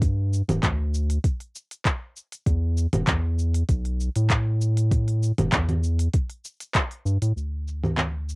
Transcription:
Already playing: G2
0.02 kick, open hi-hat, cabasa
0.33 cabasa
0.48 D1, open hi-hat, low conga, cabasa
0.63 D2, kick, clap, open hi-hat, low conga, cabasa
0.94 cabasa
1.10 open hi-hat, cabasa
1.24 kick, open hi-hat, cabasa
1.40 open hi-hat
1.55 cabasa
1.71 open hi-hat, cabasa
1.85 kick, clap, open hi-hat, cabasa
2.17 cabasa
2.32 open hi-hat, cabasa
2.46 E2, kick, open hi-hat, cabasa
2.78 cabasa
2.93 E1, open hi-hat, low conga, cabasa
3.08 E2, kick, clap, open hi-hat, low conga, cabasa
3.39 cabasa
3.55 open hi-hat, cabasa
3.69 B1, kick, open hi-hat, cabasa
3.85 open hi-hat
4.00 cabasa
4.16 A2, open hi-hat, cabasa
4.30 kick, clap, open hi-hat, cabasa
4.61 cabasa
4.77 open hi-hat, cabasa
4.91 kick, open hi-hat, cabasa
5.08 open hi-hat
5.23 cabasa
5.38 E1, open hi-hat, low conga, cabasa
5.52 E2, kick, clap, open hi-hat, low conga, cabasa
5.69 open hi-hat, low conga
5.84 cabasa
5.99 open hi-hat, cabasa
6.13 kick, open hi-hat, cabasa
6.30 open hi-hat
6.45 cabasa
6.60 open hi-hat, cabasa
6.75 kick, clap, open hi-hat, cabasa
6.91 open hi-hat
7.05 G2, cabasa
7.22 A2, open hi-hat, cabasa
7.36 D2, cabasa
7.68 cabasa
7.83 low conga, cabasa
7.98 clap, low conga, cabasa
8.29 cabasa

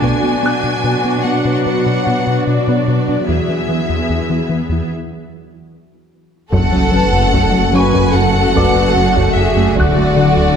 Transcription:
Already playing: D4 F#4 B5
0.02 B2 F#3 B3 F#4 B4 G#5, taiko
0.23 B3 F#4
0.43 B3 F#4 F#6
0.64 B2
0.84 B2 B3
1.05 B3 F#4
1.24 B3 F#4 F#5
1.45 B2 B3
1.66 B2 B4 F#5
1.86 B2 B4
2.07 B2 B3
2.27 B2
2.47 B2 D4 D5
2.68 B2 B3
2.88 B2 B4
3.09 B2 D4
3.28 E2 E3 B3 E4 G#4 E5
3.49 E3 B3
3.69 E3 B3
3.89 E2
4.10 E2 E3
4.30 E3 B3
4.49 E3 B3
4.69 E2 E3
6.52 F#1 F#2 C#3 F#3 A3 F#4 A4 F#5, taiko, sub drop
6.72 F#3 C#4
6.92 F#3 C#4 B4
7.12 F#2
7.31 F#2 F#3 A4, taiko
7.52 F#3 C#4
7.72 F#3 C#4 F#4 B4 G#5 C#6
7.93 F#2 F#3, taiko
8.12 F#2 F#4 A4 F#5
8.16 A4
8.34 F#2 F#4
8.55 F#2 F#3 B4 D5 D6, taiko
8.75 F#2
8.93 F#2 A3 A4
9.16 F#2 F#3, taiko
9.34 F#2 F#4 G#4 E5
9.56 F#2 A3
9.75 D1 D2 D3 D4 F#4 D5, taiko
9.80 F#6
9.96 D3 A3
10.16 D3 A3
10.37 D2

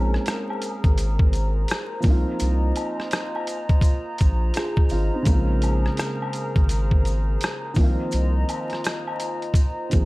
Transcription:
Already playing: A#1 G#3 A#3 C4 C#4 D#4 F4 G#4 A#4 C5 A#5
0.14 cross-stick
0.26 cross-stick, closed hi-hat, maracas
0.50 high woodblock
0.62 closed hi-hat, maracas
0.84 G#1, kick, closed hi-hat
0.98 closed hi-hat, maracas
1.19 kick
1.33 closed hi-hat, maracas
1.68 cross-stick, closed hi-hat, maracas
2.00 F3 A#3, kick, open hi-hat, maracas
2.04 C2 C4 D#4 F4 D#5
2.10 F4
2.40 C2, closed hi-hat, maracas
2.76 closed hi-hat, high woodblock, maracas
3.00 cross-stick
3.11 cross-stick, closed hi-hat, maracas
3.36 high woodblock
3.47 closed hi-hat, maracas
3.69 kick, closed hi-hat
3.81 kick, closed hi-hat, maracas
4.18 A#1, kick, closed hi-hat, maracas
4.54 F4 G#4, cross-stick, closed hi-hat, maracas
4.77 kick
4.89 G#1 F4, open hi-hat, maracas
5.14 C4 D#4
5.23 C#3 G#3 G#4 A#4, kick, closed hi-hat, maracas
5.27 A#1 A#3 C4
5.33 F4
5.62 closed hi-hat, high woodblock, maracas
5.86 cross-stick
5.97 cross-stick, closed hi-hat, maracas
6.22 high woodblock
6.33 closed hi-hat, maracas
6.56 G#1, kick, closed hi-hat
6.69 closed hi-hat, maracas
6.91 kick
7.05 closed hi-hat, maracas
7.41 cross-stick, closed hi-hat, maracas
7.74 C2 D#3 F3 F4 D#5 A#5, kick, open hi-hat, maracas
7.78 A#3 C4
7.83 F4
8.12 C2, closed hi-hat, maracas
8.49 closed hi-hat, high woodblock, maracas
8.70 cross-stick, closed hi-hat
8.84 cross-stick, closed hi-hat, maracas
9.07 high woodblock
9.20 closed hi-hat, maracas
9.42 closed hi-hat
9.54 kick, closed hi-hat, maracas
9.89 D#3 F3 A#3, kick, closed hi-hat, maracas
9.93 A#1 C4 G#4

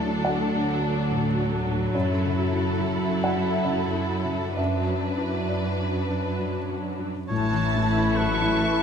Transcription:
Already playing: D2 D3 F#3 A3 D4 E4 F#4 A4 A5
0.00 D4
0.25 F#4 F#5
0.55 D4 A4
0.82 F#4 D5
1.11 A2 A4
1.39 D4 F#4
1.67 A2 D4
1.95 F#2 E4 A4 C#5
2.23 C#3 F#4
2.52 E4
2.79 F#4
3.09 E4 A4
3.24 F#5
3.37 F#4 E5
3.65 C#3 E5
3.70 A4
3.95 E4
3.99 F#4
4.25 C#3 E4
4.56 F#2 F#3 D4 B4 E5
4.87 F#3 F#4
5.17 D4 E4
5.48 F#4 D5
5.78 D4 B4
6.08 F#4 D5
6.38 F#3 B4
6.68 D4 F#4
6.99 F#3 D4
7.28 A1 A2 E3 A3 E4 C#5 A5
7.53 E3
7.75 A3
7.97 E4
8.16 F#3 A4 B4 C#6
8.40 E4
8.59 E3 A4 E5

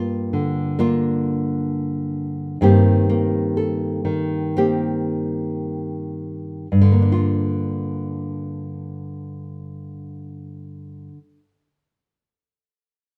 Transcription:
Already playing: G2 A#3 F4
0.33 D3
0.79 A#3 D4 F4
2.61 G2 D#3 A#3 C4 G4
3.09 A#3
3.57 A4
4.05 D#3
4.57 A#3 C4 G4
6.72 G2
6.82 D3
6.92 A#3
7.02 D4
7.12 F4

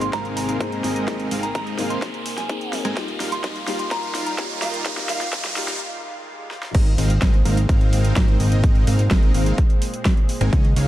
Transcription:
Already playing: G#1 C3 A#3 C4 D#4 G#4, riser
0.01 C6, closed hi-hat
0.13 G#1 G#3 C4 D#4 A#4 F5 A#5, kick, snare, closed hi-hat
0.25 closed hi-hat
0.37 A#5, open hi-hat
0.49 closed hi-hat
0.60 G#1 G#3 A#3 C4 D#4 G#4 A#4 C5, kick, closed hi-hat
0.72 closed hi-hat
0.84 G#1 G#3 C4 D#4 A#4 D#5, snare, open hi-hat
0.96 closed hi-hat
1.07 A#3 C4 D#4 G#4, kick, snare, closed hi-hat
1.20 closed hi-hat
1.31 G#1 G#3 C4 D#4 A#4 F5, open hi-hat
1.43 A#5, closed hi-hat
1.55 G#1 G#3 C4 D#4 A#4 D#5 A#5, kick, closed hi-hat
1.67 closed hi-hat
1.77 G#1 G#3 A#3 C4 D#4 G#4 A#4 F5, snare, open hi-hat
1.90 C6, closed hi-hat
2.02 kick, snare, closed hi-hat
2.14 closed hi-hat
2.26 open hi-hat
2.38 G#5, snare, closed hi-hat
2.49 A#3 C4 D#4 G#4, kick, closed hi-hat
2.61 closed hi-hat
2.73 snare, open hi-hat
2.85 G#2 G#3 C4 D#4 A#4 G#5, closed hi-hat
2.96 D#1 D#3 G3 A#3 D#4 F4 G4, kick, snare, closed hi-hat
3.08 closed hi-hat
3.20 D#1 G3 D#4 F4 A#4 F5, snare, open hi-hat
3.32 C6, closed hi-hat
3.44 D#1 G3 D#4 F4 A#4 D#5, kick, snare, closed hi-hat
3.56 closed hi-hat
3.67 D#1 G3 A#3 D#4 F4 G4 A#4 F5, snare, open hi-hat
3.79 C6, closed hi-hat
3.91 D#1 G3 D#4 F4 A#4 F5 A#5, kick, snare, closed hi-hat
4.03 closed hi-hat
4.15 snare, open hi-hat
4.26 A#5, closed hi-hat
4.38 D#1 G3 A#3 D#4 F4 G4 A#4 C#5, kick, snare, closed hi-hat
4.50 closed hi-hat
4.62 D#1 G3 D#4 F4 A#4 D#5 F5, snare, open hi-hat
4.74 closed hi-hat
4.84 A#3 D#4 F4 G4, kick, snare, closed hi-hat
4.97 snare, closed hi-hat
5.09 D#1 G3 D#4 F4 A#4 F5, snare, open hi-hat
5.21 snare, closed hi-hat
5.33 D#1 G3 D#4 F4 A#4 D#5, kick, snare, closed hi-hat
5.45 snare, closed hi-hat
5.55 D#1 G3 A#3 D#4 F4 G4 A#4 F5, snare, open hi-hat
5.68 snare, closed hi-hat
5.80 swell
6.51 snare
6.63 snare
6.75 G#1 A#2 G#3 C4 D#4 A#4 D#5, kick, closed hi-hat, crash
6.86 closed hi-hat
6.98 G#1 G#3 C4 D#4 A#4 F5, open hi-hat
7.10 closed hi-hat
7.22 G#1 G#3 C4 D#4 A#4 D#5, kick, snare, closed hi-hat
7.34 closed hi-hat
7.45 G#1 G#3 C4 D#4 A#4 F5, open hi-hat
7.57 closed hi-hat
7.69 G#1 G#3 C4 D#4 A#4 F5, kick, closed hi-hat
7.81 closed hi-hat
7.93 open hi-hat
8.05 closed hi-hat
8.16 G#1, kick, snare, closed hi-hat
8.28 closed hi-hat
8.40 G#1 G#3 C4 D#4 A#4 D#5, open hi-hat
8.52 closed hi-hat
8.63 kick, closed hi-hat
8.75 closed hi-hat
8.87 G#1 G#3 C4 D#4 A#4 F5, open hi-hat
8.99 closed hi-hat
9.11 G#1 G#3 C4 D#4 A#4 D#5, kick, snare, closed hi-hat
9.23 closed hi-hat
9.34 G#1 G#3 C4 D#4 A#4 F5, open hi-hat
9.46 closed hi-hat
9.58 kick, closed hi-hat
9.70 closed hi-hat
9.82 open hi-hat
9.94 closed hi-hat
10.05 kick, snare, closed hi-hat
10.17 closed hi-hat
10.29 open hi-hat
10.41 G#1 G#3 C4 D#4 A#4 G#5, closed hi-hat
10.53 C#2 C#3 G#3 C#4 D#4 C#5 D#5, kick, closed hi-hat
10.65 closed hi-hat
10.76 C#2 G#3 C#4 D#4 C#5 F5, open hi-hat

